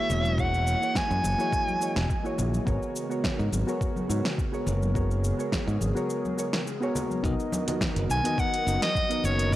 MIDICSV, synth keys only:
0, 0, Header, 1, 2, 480
1, 0, Start_track
1, 0, Key_signature, 5, "major"
1, 0, Tempo, 571429
1, 320, Time_signature, 4, 2, 24, 8
1, 8029, End_track
2, 0, Start_track
2, 0, Title_t, "Synth keys"
2, 0, Program_c, 0, 88
2, 0, Note_on_c, 0, 58, 86
2, 0, Note_on_c, 0, 64, 76
2, 0, Note_on_c, 0, 66, 74
2, 0, Note_on_c, 0, 68, 80
2, 0, Note_on_c, 0, 73, 96
2, 287, Note_off_c, 0, 58, 0
2, 289, Note_off_c, 0, 64, 0
2, 293, Note_off_c, 0, 66, 0
2, 296, Note_off_c, 0, 68, 0
2, 299, Note_off_c, 0, 73, 0
2, 309, Note_on_c, 0, 58, 87
2, 317, Note_on_c, 0, 64, 82
2, 322, Note_on_c, 0, 66, 82
2, 328, Note_on_c, 0, 68, 78
2, 334, Note_on_c, 0, 73, 98
2, 652, Note_off_c, 0, 58, 0
2, 656, Note_off_c, 0, 64, 0
2, 658, Note_off_c, 0, 66, 0
2, 661, Note_off_c, 0, 68, 0
2, 664, Note_off_c, 0, 73, 0
2, 677, Note_on_c, 0, 58, 69
2, 682, Note_on_c, 0, 64, 63
2, 688, Note_on_c, 0, 66, 64
2, 696, Note_on_c, 0, 68, 64
2, 702, Note_on_c, 0, 73, 75
2, 1132, Note_off_c, 0, 58, 0
2, 1135, Note_off_c, 0, 64, 0
2, 1138, Note_off_c, 0, 66, 0
2, 1141, Note_off_c, 0, 68, 0
2, 1144, Note_off_c, 0, 73, 0
2, 1157, Note_on_c, 0, 58, 96
2, 1165, Note_on_c, 0, 64, 85
2, 1169, Note_on_c, 0, 66, 84
2, 1174, Note_on_c, 0, 68, 84
2, 1181, Note_on_c, 0, 73, 103
2, 1488, Note_off_c, 0, 58, 0
2, 1492, Note_off_c, 0, 64, 0
2, 1494, Note_off_c, 0, 66, 0
2, 1497, Note_off_c, 0, 68, 0
2, 1500, Note_off_c, 0, 73, 0
2, 1510, Note_on_c, 0, 58, 79
2, 1517, Note_on_c, 0, 64, 74
2, 1524, Note_on_c, 0, 66, 70
2, 1528, Note_on_c, 0, 68, 71
2, 1535, Note_on_c, 0, 73, 89
2, 1644, Note_off_c, 0, 58, 0
2, 1648, Note_off_c, 0, 64, 0
2, 1651, Note_off_c, 0, 66, 0
2, 1653, Note_off_c, 0, 68, 0
2, 1657, Note_off_c, 0, 73, 0
2, 1877, Note_on_c, 0, 58, 86
2, 1883, Note_on_c, 0, 64, 79
2, 1888, Note_on_c, 0, 66, 76
2, 1895, Note_on_c, 0, 68, 78
2, 1901, Note_on_c, 0, 73, 94
2, 2208, Note_off_c, 0, 58, 0
2, 2211, Note_off_c, 0, 64, 0
2, 2213, Note_off_c, 0, 66, 0
2, 2217, Note_off_c, 0, 68, 0
2, 2220, Note_off_c, 0, 73, 0
2, 2229, Note_on_c, 0, 59, 84
2, 2235, Note_on_c, 0, 66, 81
2, 2240, Note_on_c, 0, 68, 80
2, 2248, Note_on_c, 0, 70, 81
2, 2252, Note_on_c, 0, 73, 98
2, 2572, Note_off_c, 0, 59, 0
2, 2575, Note_off_c, 0, 66, 0
2, 2578, Note_off_c, 0, 68, 0
2, 2581, Note_off_c, 0, 70, 0
2, 2583, Note_off_c, 0, 73, 0
2, 2595, Note_on_c, 0, 59, 68
2, 2602, Note_on_c, 0, 66, 66
2, 2607, Note_on_c, 0, 68, 64
2, 2613, Note_on_c, 0, 70, 68
2, 2619, Note_on_c, 0, 73, 78
2, 3051, Note_off_c, 0, 59, 0
2, 3054, Note_off_c, 0, 66, 0
2, 3057, Note_off_c, 0, 68, 0
2, 3060, Note_off_c, 0, 70, 0
2, 3063, Note_off_c, 0, 73, 0
2, 3078, Note_on_c, 0, 59, 91
2, 3083, Note_on_c, 0, 66, 85
2, 3090, Note_on_c, 0, 68, 85
2, 3096, Note_on_c, 0, 70, 84
2, 3102, Note_on_c, 0, 73, 96
2, 3408, Note_off_c, 0, 59, 0
2, 3411, Note_off_c, 0, 66, 0
2, 3414, Note_off_c, 0, 68, 0
2, 3417, Note_off_c, 0, 70, 0
2, 3420, Note_off_c, 0, 73, 0
2, 3428, Note_on_c, 0, 59, 82
2, 3435, Note_on_c, 0, 66, 72
2, 3440, Note_on_c, 0, 68, 78
2, 3446, Note_on_c, 0, 70, 73
2, 3452, Note_on_c, 0, 73, 91
2, 3563, Note_off_c, 0, 59, 0
2, 3567, Note_off_c, 0, 66, 0
2, 3569, Note_off_c, 0, 68, 0
2, 3572, Note_off_c, 0, 70, 0
2, 3575, Note_off_c, 0, 73, 0
2, 3795, Note_on_c, 0, 59, 86
2, 3800, Note_on_c, 0, 66, 78
2, 3805, Note_on_c, 0, 68, 79
2, 3812, Note_on_c, 0, 70, 78
2, 3818, Note_on_c, 0, 73, 98
2, 4127, Note_off_c, 0, 59, 0
2, 4130, Note_off_c, 0, 66, 0
2, 4132, Note_off_c, 0, 68, 0
2, 4135, Note_off_c, 0, 70, 0
2, 4138, Note_off_c, 0, 73, 0
2, 4147, Note_on_c, 0, 59, 90
2, 4153, Note_on_c, 0, 66, 81
2, 4160, Note_on_c, 0, 68, 80
2, 4165, Note_on_c, 0, 70, 80
2, 4171, Note_on_c, 0, 73, 102
2, 4491, Note_off_c, 0, 59, 0
2, 4494, Note_off_c, 0, 66, 0
2, 4497, Note_off_c, 0, 68, 0
2, 4500, Note_off_c, 0, 70, 0
2, 4503, Note_off_c, 0, 73, 0
2, 4514, Note_on_c, 0, 59, 71
2, 4520, Note_on_c, 0, 66, 65
2, 4527, Note_on_c, 0, 68, 66
2, 4532, Note_on_c, 0, 70, 63
2, 4538, Note_on_c, 0, 73, 79
2, 4971, Note_off_c, 0, 59, 0
2, 4974, Note_off_c, 0, 66, 0
2, 4977, Note_off_c, 0, 68, 0
2, 4980, Note_off_c, 0, 70, 0
2, 4983, Note_off_c, 0, 73, 0
2, 4994, Note_on_c, 0, 59, 91
2, 5000, Note_on_c, 0, 66, 86
2, 5005, Note_on_c, 0, 68, 87
2, 5011, Note_on_c, 0, 70, 81
2, 5017, Note_on_c, 0, 73, 100
2, 5326, Note_off_c, 0, 59, 0
2, 5329, Note_off_c, 0, 66, 0
2, 5332, Note_off_c, 0, 68, 0
2, 5335, Note_off_c, 0, 70, 0
2, 5338, Note_off_c, 0, 73, 0
2, 5346, Note_on_c, 0, 59, 73
2, 5352, Note_on_c, 0, 66, 71
2, 5359, Note_on_c, 0, 68, 70
2, 5364, Note_on_c, 0, 70, 70
2, 5371, Note_on_c, 0, 73, 87
2, 5550, Note_off_c, 0, 59, 0
2, 5553, Note_off_c, 0, 66, 0
2, 5557, Note_off_c, 0, 68, 0
2, 5559, Note_off_c, 0, 70, 0
2, 5563, Note_off_c, 0, 73, 0
2, 5716, Note_on_c, 0, 59, 93
2, 5723, Note_on_c, 0, 66, 93
2, 5729, Note_on_c, 0, 68, 87
2, 5734, Note_on_c, 0, 70, 94
2, 5740, Note_on_c, 0, 73, 110
2, 6047, Note_off_c, 0, 59, 0
2, 6051, Note_off_c, 0, 66, 0
2, 6054, Note_off_c, 0, 68, 0
2, 6057, Note_off_c, 0, 70, 0
2, 6059, Note_off_c, 0, 73, 0
2, 6070, Note_on_c, 0, 59, 92
2, 6075, Note_on_c, 0, 63, 83
2, 6082, Note_on_c, 0, 66, 83
2, 6087, Note_on_c, 0, 70, 82
2, 6093, Note_on_c, 0, 75, 100
2, 6412, Note_off_c, 0, 59, 0
2, 6415, Note_off_c, 0, 63, 0
2, 6418, Note_off_c, 0, 66, 0
2, 6421, Note_off_c, 0, 70, 0
2, 6424, Note_off_c, 0, 75, 0
2, 6436, Note_on_c, 0, 59, 74
2, 6443, Note_on_c, 0, 63, 63
2, 6449, Note_on_c, 0, 66, 69
2, 6453, Note_on_c, 0, 70, 66
2, 6459, Note_on_c, 0, 75, 78
2, 6891, Note_off_c, 0, 59, 0
2, 6895, Note_off_c, 0, 63, 0
2, 6898, Note_off_c, 0, 66, 0
2, 6900, Note_off_c, 0, 70, 0
2, 6903, Note_off_c, 0, 75, 0
2, 6918, Note_on_c, 0, 59, 90
2, 6923, Note_on_c, 0, 63, 78
2, 6929, Note_on_c, 0, 66, 83
2, 6934, Note_on_c, 0, 70, 87
2, 6940, Note_on_c, 0, 75, 105
2, 7249, Note_off_c, 0, 59, 0
2, 7251, Note_off_c, 0, 63, 0
2, 7254, Note_off_c, 0, 66, 0
2, 7257, Note_off_c, 0, 70, 0
2, 7259, Note_off_c, 0, 75, 0
2, 7269, Note_on_c, 0, 59, 86
2, 7275, Note_on_c, 0, 63, 76
2, 7280, Note_on_c, 0, 66, 80
2, 7288, Note_on_c, 0, 70, 75
2, 7293, Note_on_c, 0, 75, 100
2, 7404, Note_off_c, 0, 59, 0
2, 7407, Note_off_c, 0, 63, 0
2, 7409, Note_off_c, 0, 66, 0
2, 7413, Note_off_c, 0, 70, 0
2, 7416, Note_off_c, 0, 75, 0
2, 7638, Note_on_c, 0, 59, 87
2, 7645, Note_on_c, 0, 63, 80
2, 7650, Note_on_c, 0, 66, 78
2, 7656, Note_on_c, 0, 70, 82
2, 7662, Note_on_c, 0, 75, 100
2, 7969, Note_off_c, 0, 59, 0
2, 7972, Note_off_c, 0, 63, 0
2, 7974, Note_off_c, 0, 66, 0
2, 7978, Note_off_c, 0, 70, 0
2, 7980, Note_off_c, 0, 75, 0
2, 7988, Note_on_c, 0, 59, 93
2, 7992, Note_on_c, 0, 63, 86
2, 8000, Note_on_c, 0, 66, 85
2, 8029, Note_off_c, 0, 59, 0
2, 8029, Note_off_c, 0, 63, 0
2, 8029, Note_off_c, 0, 66, 0
2, 8029, End_track
0, 0, End_of_file